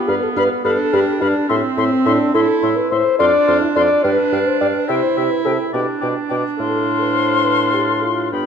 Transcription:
0.00 0.64 B3 medium
0.00 0.10 G4 loud
0.08 0.21 G2 medium
0.08 0.23 B4 loud
0.08 0.21 F5 medium
0.08 0.15 B5 medium
0.23 0.29 A4 loud
0.36 0.49 G2 medium
0.36 0.49 B4 loud
0.36 0.49 F5 medium
0.36 0.43 B5 medium
0.65 0.78 G2 medium
0.65 1.51 D4 medium
0.65 0.95 A4 loud
0.65 0.78 F5 medium
0.65 0.71 B5 medium
0.93 1.06 G2 medium
0.93 1.23 G4 loud
0.93 1.06 F5 medium
0.93 1.00 B5 medium
1.21 1.34 G2 medium
1.21 1.49 D4 loud
1.21 1.34 F5 medium
1.21 1.28 B5 medium
1.49 1.62 A2 medium
1.49 2.34 C4 loud
1.49 1.62 E4 loud
1.49 1.62 E5 medium
1.49 1.56 C6 medium
1.77 1.90 A2 medium
1.77 2.08 C4 medium
1.77 1.90 E5 medium
1.77 1.84 C6 medium
2.05 2.18 A2 medium
2.05 2.33 D4 loud
2.05 2.18 E5 medium
2.05 2.12 C6 medium
2.34 2.47 A2 medium
2.34 2.91 E4 loud
2.34 2.79 A4 loud
2.34 2.47 E5 medium
2.34 2.41 C6 medium
2.63 2.75 A2 medium
2.63 2.76 E5 medium
2.63 2.69 C6 medium
2.77 2.92 B4 loud
2.91 3.04 A2 medium
2.91 3.19 C5 loud
2.91 3.04 E5 medium
2.91 2.97 C6 medium
3.19 3.32 F2 medium
3.19 4.00 D4 loud
3.19 3.61 D5 loud
3.19 3.32 F5 medium
3.19 3.26 C6 medium
3.48 3.61 F2 medium
3.48 3.60 F5 medium
3.48 3.54 C6 medium
3.62 3.68 E4 loud
3.76 3.89 F2 medium
3.76 4.05 D5 loud
3.76 3.89 F5 medium
3.76 3.82 C6 medium
4.04 4.17 G2 medium
4.04 4.90 D4 loud
4.04 4.49 B4 loud
4.04 4.17 F5 medium
4.04 4.11 G5 medium
4.32 4.45 G2 medium
4.32 4.45 F5 medium
4.32 4.39 G5 medium
4.47 4.60 C5 loud
4.60 4.74 G2 medium
4.60 4.67 D5 loud
4.60 4.73 F5 medium
4.60 4.67 G5 medium
4.74 4.88 B4 loud
4.88 5.02 C3 medium
4.88 5.73 E4 loud
4.88 5.32 C5 loud
4.88 5.01 E5 medium
4.88 4.95 G5 medium
5.16 5.30 C3 medium
5.16 5.29 E5 medium
5.16 5.23 G5 medium
5.31 5.44 B4 loud
5.45 5.58 C3 medium
5.45 5.58 A4 loud
5.45 5.57 E5 medium
5.45 5.52 G5 medium
5.73 5.87 B2 medium
5.73 8.28 D4 medium
5.73 6.01 G4 medium
5.73 5.86 D5 medium
5.73 5.80 G5 medium
6.01 6.15 B2 medium
6.01 6.14 D5 medium
6.01 6.08 G5 medium
6.29 6.44 B2 medium
6.29 6.43 D5 medium
6.29 6.36 G5 medium
6.58 8.29 A2 medium
6.58 6.98 A4 loud
6.58 8.29 F5 medium
6.58 8.28 C6 medium
7.02 7.17 B4 medium
7.15 7.46 C5 loud
7.45 7.73 B4 loud
7.74 7.80 G4 medium
7.88 8.04 A4 medium
8.03 8.31 F4 medium
8.32 8.46 G2 medium
8.32 8.46 B3 medium
8.32 8.46 D4 medium
8.32 8.46 G5 medium
8.32 8.46 B5 medium

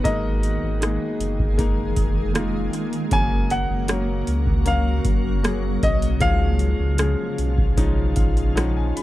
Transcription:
0.00 3.07 D#3 medium
0.00 0.78 G#3 medium
0.00 3.08 G#3 medium
0.00 6.16 A#3 medium
0.00 0.78 A#3 medium
0.00 0.78 A#4 medium
0.04 0.59 G#1 medium
0.04 0.78 D#4 medium
0.04 3.09 G#4 medium
0.04 1.54 D#5 medium
0.04 kick medium
0.04 closed hi-hat medium
0.43 closed hi-hat soft
0.62 0.98 G#1 medium
0.81 1.54 G#3 medium
0.81 1.54 A#3 medium
0.81 1.54 D#4 medium
0.81 1.55 G#4 medium
0.81 cross-stick medium
0.81 closed hi-hat medium
1.19 1.93 F#1 medium
1.19 closed hi-hat soft
1.40 kick medium
1.58 2.31 G#3 medium
1.58 2.31 A#3 medium
1.58 2.31 D#4 medium
1.58 2.31 A#4 medium
1.58 kick medium
1.58 closed hi-hat medium
1.96 2.70 F1 medium
1.96 kick medium
1.96 closed hi-hat medium
2.34 3.07 G#3 medium
2.34 3.08 A#3 medium
2.34 3.08 D#4 medium
2.34 3.08 F4 medium
2.34 cross-stick loud
2.34 closed hi-hat medium
2.73 cross-stick soft
2.73 closed hi-hat medium
2.93 closed hi-hat soft
3.10 3.66 F#1 loud
3.10 9.03 C#3 medium
3.10 4.24 C#3 soft
3.10 6.17 F#3 medium
3.10 3.85 F#3 medium
3.10 3.85 A#3 medium
3.10 3.85 C#4 medium
3.10 6.17 F#4 medium
3.10 3.85 A#4 medium
3.10 3.52 G#5 loud
3.10 kick medium
3.10 closed hi-hat medium
3.50 4.70 F#5 medium
3.50 closed hi-hat medium
3.70 4.23 F#1 medium
3.88 4.62 F#3 medium
3.88 4.62 A#3 medium
3.88 4.62 C#4 medium
3.88 4.62 A#4 medium
3.88 cross-stick medium
3.88 closed hi-hat medium
4.27 5.01 C#2 medium
4.27 closed hi-hat medium
4.47 kick medium
4.65 5.39 F#3 medium
4.65 5.39 A#3 medium
4.65 5.39 C#4 medium
4.65 5.39 A#4 medium
4.65 5.40 F5 medium
4.65 closed hi-hat medium
5.05 5.78 F#1 medium
5.05 kick medium
5.05 closed hi-hat medium
5.43 6.17 F#3 medium
5.43 6.17 A#3 soft
5.43 6.17 C#4 medium
5.43 6.17 G#4 medium
5.43 cross-stick loud
5.43 closed hi-hat medium
5.82 6.22 B1 medium
5.82 6.19 D#5 medium
5.82 kick medium
5.82 cross-stick soft
5.82 closed hi-hat medium
6.02 closed hi-hat soft
6.19 6.75 C#2 loud
6.19 7.34 G#2 medium
6.19 9.03 F3 medium
6.19 6.95 F3 medium
6.19 9.03 G#3 medium
6.19 6.94 G#3 medium
6.19 6.95 C#4 medium
6.19 9.03 F4 medium
6.19 6.95 G#4 medium
6.19 8.53 F5 loud
6.19 kick medium
6.19 closed hi-hat medium
6.59 closed hi-hat medium
6.79 7.16 C#2 medium
6.98 7.74 F3 medium
6.98 7.74 G#3 medium
6.98 7.74 C#4 medium
6.98 7.74 G#4 medium
6.98 cross-stick medium
6.98 closed hi-hat medium
7.38 8.13 B1 medium
7.38 closed hi-hat medium
7.58 kick medium
7.77 8.53 F3 medium
7.77 8.53 G#3 medium
7.77 8.53 C#4 medium
7.77 8.53 D#4 medium
7.77 kick medium
7.77 closed hi-hat medium
8.16 8.93 A#1 medium
8.16 8.54 F5 medium
8.16 kick medium
8.16 closed hi-hat medium
8.37 closed hi-hat soft
8.55 9.03 F3 medium
8.55 9.03 G#3 medium
8.55 9.03 C#4 medium
8.55 9.03 D#4 medium
8.55 8.75 F#5 medium
8.55 cross-stick loud
8.55 closed hi-hat medium
8.76 8.95 G#5 medium
8.96 9.03 B5 medium
8.96 closed hi-hat medium

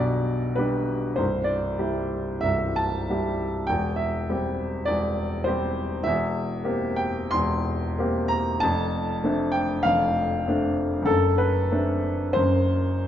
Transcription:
0.00 1.21 B1 soft
0.00 1.21 B2 soft
0.00 0.58 G3 soft
0.00 0.58 D4 soft
0.00 0.59 G4 soft
0.00 0.56 D5 medium
0.00 1.22 E5 medium
0.00 1.22 G5 soft
0.55 1.15 G3 soft
0.55 1.15 D4 soft
0.55 1.15 G4 soft
0.55 1.18 B4 medium
1.16 2.38 C1 soft
1.16 2.38 C2 soft
1.16 1.47 C5 medium
1.44 2.40 D5 soft
1.79 2.38 G3 soft
1.79 2.39 E4 soft
1.79 2.39 G4 soft
2.41 3.66 C1 soft
2.41 3.66 C2 soft
2.41 2.76 E5 medium
2.76 3.69 A5 medium
3.10 3.66 G3 soft
3.10 3.66 E4 soft
3.10 3.66 G4 soft
3.67 4.82 E1 soft
3.67 4.82 E2 soft
3.67 3.98 G5 medium
3.96 4.84 E5 medium
4.29 4.83 G3 soft
4.29 4.83 C4 soft
4.29 4.83 G4 soft
4.85 6.02 E1 soft
4.85 6.03 E2 soft
4.85 5.46 D5 medium
5.44 6.02 G3 soft
5.44 6.02 C4 soft
5.44 6.02 G4 soft
5.44 6.04 C5 medium
6.03 7.30 E1 soft
6.03 7.32 E2 soft
6.03 6.98 E5 medium
6.64 7.30 A#3 soft
6.64 7.31 C4 soft
6.64 7.31 G4 soft
6.96 7.34 G5 medium
7.31 8.58 E1 soft
7.31 8.58 E2 soft
7.31 8.29 C6 medium
7.98 8.58 A#3 soft
7.98 8.58 C4 soft
7.98 8.58 G4 soft
8.28 8.61 A#5 medium
8.60 9.81 F1 soft
8.60 9.81 F2 soft
8.60 9.53 A5 medium
9.24 9.80 A3 soft
9.24 9.80 C4 soft
9.24 9.80 D4 soft
9.52 9.83 G5 medium
9.83 11.05 F1 soft
9.83 11.05 F2 soft
9.83 10.76 F5 medium
10.47 11.05 A3 soft
10.47 11.05 C4 soft
10.47 11.05 D4 soft
11.02 12.31 F#1 soft
11.02 12.30 F#2 soft
11.02 11.39 A4 medium
11.38 12.36 B4 medium
11.71 12.33 A3 soft
11.71 12.33 C4 soft
11.71 12.33 D4 soft
12.33 13.07 F#1 soft
12.33 13.07 F#2 soft
12.33 13.07 C5 medium

